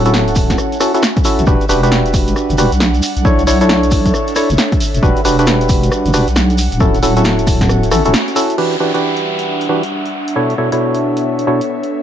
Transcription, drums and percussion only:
0.05 closed hi-hat medium
0.05 shekere soft
0.14 snare loud
0.14 shekere soft
0.28 closed hi-hat medium
0.28 shekere soft
0.35 kick loud
0.35 open hi-hat loud
0.35 shekere medium
0.50 kick medium
0.50 snare medium
0.50 closed hi-hat medium
0.50 shekere soft
0.58 cross-stick medium
0.58 shekere soft
0.72 closed hi-hat soft
0.72 shekere soft
0.80 cross-stick medium
0.80 open hi-hat loud
0.80 shekere medium
0.95 closed hi-hat medium
0.95 shekere soft
1.03 snare loud
1.03 shekere medium
1.16 kick loud
1.16 closed hi-hat soft
1.16 shekere soft
1.25 open hi-hat loud
1.25 shekere loud
1.38 closed hi-hat medium
1.38 shekere soft
1.47 kick loud
1.47 shekere soft
1.61 closed hi-hat soft
1.61 shekere soft
1.69 open hi-hat medium
1.69 shekere medium
1.83 closed hi-hat medium
1.83 shekere soft
1.92 snare loud
1.92 shekere soft
2.06 closed hi-hat medium
2.06 shekere soft
2.14 kick loud
2.14 open hi-hat loud
2.14 shekere medium
2.27 closed hi-hat medium
2.27 shekere soft
2.36 cross-stick medium
2.36 shekere medium
2.50 closed hi-hat medium
2.50 shekere soft
2.58 cross-stick medium
2.58 open hi-hat loud
2.58 shekere medium
2.72 closed hi-hat medium
2.72 shekere soft
2.80 snare loud
2.80 shekere medium
2.94 closed hi-hat soft
2.94 shekere soft
3.03 open hi-hat loud
3.03 shekere loud
3.17 closed hi-hat medium
3.17 shekere soft
3.25 kick loud
3.25 shekere medium
3.39 closed hi-hat soft
3.39 shekere soft
3.47 open hi-hat loud
3.47 shekere medium
3.61 closed hi-hat medium
3.61 shekere soft
3.69 snare loud
3.69 shekere soft
3.83 closed hi-hat medium
3.83 shekere soft
3.91 kick loud
3.91 open hi-hat loud
3.91 shekere medium
4.06 kick medium
4.06 closed hi-hat medium
4.06 shekere soft
4.14 cross-stick medium
4.14 shekere medium
4.28 closed hi-hat medium
4.28 shekere soft
4.36 cross-stick medium
4.36 open hi-hat loud
4.36 shekere medium
4.50 closed hi-hat medium
4.50 shekere soft
4.58 snare loud
4.58 shekere medium
4.72 kick loud
4.72 closed hi-hat soft
4.72 shekere soft
4.80 open hi-hat loud
4.80 shekere medium
4.94 closed hi-hat medium
4.94 shekere soft
5.03 kick loud
5.03 shekere soft
5.17 closed hi-hat soft
5.17 shekere soft
5.25 open hi-hat loud
5.25 shekere medium
5.39 closed hi-hat medium
5.39 shekere soft
5.46 snare loud
5.46 shekere soft
5.61 closed hi-hat medium
5.61 shekere soft
5.69 kick loud
5.69 open hi-hat loud
5.69 shekere medium
5.83 closed hi-hat medium
5.83 shekere soft
5.92 cross-stick medium
5.92 shekere soft
6.06 closed hi-hat medium
6.06 shekere soft
6.14 cross-stick medium
6.14 open hi-hat loud
6.14 shekere medium
6.27 closed hi-hat medium
6.27 shekere soft
6.36 snare loud
6.36 shekere medium
6.50 closed hi-hat soft
6.50 shekere soft
6.58 open hi-hat loud
6.58 shekere loud
6.72 closed hi-hat medium
6.72 shekere soft
6.80 kick loud
6.80 shekere soft
6.95 closed hi-hat soft
6.95 shekere soft
7.03 open hi-hat loud
7.03 shekere medium
7.17 closed hi-hat medium
7.17 shekere soft
7.24 snare loud
7.24 shekere medium
7.39 closed hi-hat medium
7.39 shekere soft
7.47 kick medium
7.47 cross-stick soft
7.47 open hi-hat loud
7.47 shekere medium
7.61 kick medium
7.61 snare medium
7.61 closed hi-hat medium
7.61 shekere soft
7.69 cross-stick medium
7.69 shekere soft
7.83 closed hi-hat medium
7.83 shekere soft
7.92 cross-stick medium
7.92 open hi-hat loud
7.92 shekere medium
8.05 closed hi-hat medium
8.05 shekere soft
8.14 snare loud
8.14 shekere medium
8.28 closed hi-hat soft
8.28 shekere soft
8.36 open hi-hat loud
8.36 shekere medium
8.50 closed hi-hat medium
8.50 shekere soft
8.58 crash medium
8.72 closed hi-hat soft
8.95 closed hi-hat medium
9.17 closed hi-hat soft
9.39 closed hi-hat medium
9.61 closed hi-hat soft
9.83 closed hi-hat medium
10.06 closed hi-hat soft
10.28 closed hi-hat medium
10.50 closed hi-hat soft
10.72 closed hi-hat medium
10.95 closed hi-hat soft
11.17 closed hi-hat medium
11.39 closed hi-hat soft
11.61 closed hi-hat medium
11.83 closed hi-hat soft

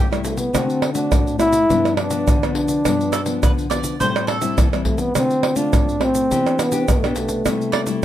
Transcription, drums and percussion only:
0.13 pandeiro soft
0.13 tamborim medium
0.13 shaker soft
0.25 pandeiro medium
0.25 shaker medium
0.37 pandeiro medium
0.37 shaker medium
0.55 pandeiro medium
0.55 tamborim medium
0.55 shaker medium
0.55 surdo medium
0.70 pandeiro soft
0.70 shaker soft
0.82 pandeiro medium
0.82 tamborim medium
0.95 pandeiro medium
0.95 shaker medium
1.12 pandeiro medium
1.12 tamborim medium
1.12 shaker medium
1.12 surdo loud
1.27 pandeiro soft
1.27 shaker soft
1.40 pandeiro medium
1.40 tamborim medium
1.40 shaker medium
1.53 pandeiro medium
1.53 shaker medium
1.70 pandeiro medium
1.70 shaker medium
1.70 surdo medium
1.85 pandeiro soft
1.85 tamborim medium
1.85 shaker soft
1.97 pandeiro medium
1.97 tamborim medium
2.11 pandeiro medium
2.11 shaker medium
2.28 pandeiro medium
2.28 tamborim medium
2.28 shaker medium
2.28 surdo loud
2.43 pandeiro soft
2.43 tamborim medium
2.43 shaker soft
2.55 pandeiro medium
2.68 pandeiro medium
2.68 shaker medium
2.85 pandeiro medium
2.85 tamborim medium
2.85 shaker medium
2.85 surdo medium
3.01 pandeiro soft
3.01 shaker soft
3.13 pandeiro medium
3.13 tamborim medium
3.13 shaker medium
3.26 pandeiro medium
3.26 shaker medium
3.43 pandeiro medium
3.43 tamborim medium
3.43 shaker medium
3.43 surdo loud
3.58 pandeiro soft
3.58 shaker soft
3.71 pandeiro medium
3.71 tamborim medium
3.71 shaker medium
3.84 pandeiro medium
3.84 shaker medium
4.01 pandeiro medium
4.01 shaker medium
4.01 surdo medium
4.16 pandeiro soft
4.16 tamborim medium
4.16 shaker soft
4.28 pandeiro medium
4.28 tamborim medium
4.42 pandeiro medium
4.42 shaker medium
4.58 pandeiro medium
4.58 tamborim medium
4.58 shaker medium
4.58 surdo loud
4.73 pandeiro soft
4.73 tamborim medium
4.73 shaker soft
4.85 pandeiro medium
4.85 surdo medium
4.98 pandeiro medium
4.98 shaker medium
5.15 pandeiro medium
5.15 tamborim medium
5.15 shaker medium
5.15 surdo medium
5.30 pandeiro soft
5.30 shaker soft
5.43 pandeiro medium
5.43 tamborim medium
5.56 pandeiro medium
5.56 shaker medium
5.73 pandeiro medium
5.73 tamborim medium
5.73 shaker medium
5.73 surdo loud
5.89 pandeiro soft
5.89 shaker soft
6.01 pandeiro medium
6.01 tamborim medium
6.15 pandeiro medium
6.15 shaker medium
6.31 pandeiro medium
6.31 shaker medium
6.31 surdo medium
6.46 pandeiro soft
6.46 tamborim medium
6.46 shaker soft
6.59 pandeiro medium
6.59 tamborim medium
6.59 shaker medium
6.72 pandeiro medium
6.72 shaker medium
6.88 pandeiro medium
6.88 tamborim medium
6.88 shaker medium
6.88 surdo loud
7.04 pandeiro soft
7.04 tamborim medium
7.04 shaker soft
7.16 pandeiro medium
7.16 shaker medium
7.29 pandeiro medium
7.29 shaker medium
7.46 pandeiro medium
7.46 tamborim medium
7.46 shaker medium
7.46 surdo medium
7.61 pandeiro soft
7.61 shaker soft
7.73 pandeiro medium
7.73 tamborim medium
7.86 pandeiro medium
7.86 shaker medium

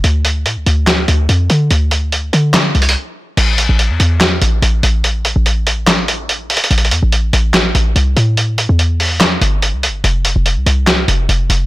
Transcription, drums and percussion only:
0.04 closed hi-hat medium
0.25 closed hi-hat medium
0.46 closed hi-hat medium
0.66 closed hi-hat medium
0.87 snare loud
0.87 clap medium
0.87 closed hi-hat medium
1.08 closed hi-hat medium
1.29 closed hi-hat medium
1.50 closed hi-hat medium
1.71 closed hi-hat medium
1.91 closed hi-hat medium
2.12 closed hi-hat medium
2.33 closed hi-hat medium
2.54 snare loud
2.54 clap medium
2.54 closed hi-hat medium
2.75 closed hi-hat soft
2.82 closed hi-hat medium
2.89 closed hi-hat medium
3.37 closed hi-hat medium
3.37 crash loud
3.58 closed hi-hat medium
3.79 closed hi-hat medium
4.00 closed hi-hat medium
4.21 snare loud
4.21 clap medium
4.21 closed hi-hat medium
4.42 closed hi-hat medium
4.62 closed hi-hat medium
4.83 closed hi-hat medium
5.04 closed hi-hat medium
5.25 closed hi-hat medium
5.46 closed hi-hat medium
5.67 closed hi-hat medium
5.87 snare loud
5.87 clap medium
5.87 closed hi-hat medium
6.08 closed hi-hat medium
6.29 closed hi-hat medium
6.50 closed hi-hat medium
6.50 open hi-hat medium
6.57 closed hi-hat medium
6.64 closed hi-hat medium
6.71 closed hi-hat medium
6.78 closed hi-hat medium
6.85 closed hi-hat soft
6.91 closed hi-hat medium
7.12 closed hi-hat medium
7.33 closed hi-hat medium
7.54 snare loud
7.54 clap medium
7.54 closed hi-hat medium
7.75 closed hi-hat medium
7.96 closed hi-hat medium
8.17 closed hi-hat medium
8.37 closed hi-hat medium
8.58 closed hi-hat medium
8.79 closed hi-hat medium
9.00 open hi-hat medium
9.21 snare loud
9.21 clap medium
9.21 closed hi-hat medium
9.42 closed hi-hat medium
9.62 closed hi-hat medium
9.83 closed hi-hat medium
10.04 closed hi-hat medium
10.25 closed hi-hat medium
10.46 closed hi-hat medium
10.66 closed hi-hat medium
10.87 snare loud
10.87 clap medium
10.87 closed hi-hat medium
11.08 closed hi-hat medium
11.29 closed hi-hat medium
11.50 closed hi-hat medium

